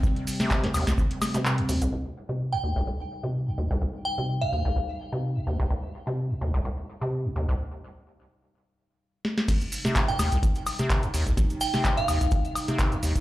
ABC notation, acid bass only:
X:1
M:4/4
L:1/16
Q:"Swing 16ths" 1/4=127
K:Cm
V:1 name="Acid bass" clef=bass
C,, z2 C,2 D,, E,, C,, C,, z2 C,2 D,, E,, C,, | C,, z2 C,2 D,, E,, C,, C,, z2 C,2 D,, E,, C,, | C,, z2 C,2 D,, E,, C,, C,, z2 C,2 D,, E,, C,, | C,, z2 C,2 D,, E,, C,, C,, z2 C,2 D,, E,, C,, |
z16 | C,, z2 C,2 D,, E,, C,, C,, z2 C,2 D,, E,, C,, | C,, z2 C,2 D,, E,, C,, C,, z2 C,2 D,, E,, C,, |]